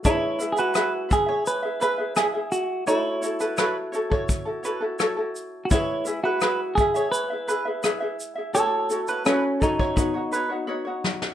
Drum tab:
SH |x-xxx-x-x-x-x-x-|x-xxx-x-x-x-x-x-|x-x-x-xxx-x-x-x-|x-xxx-x-x-x-----|
SD |----r-------r---|---rr-------r---|----r-------r---|----r---------oo|
BD |o-----o---------|-------oo-------|o-----o---------|------ooo-------|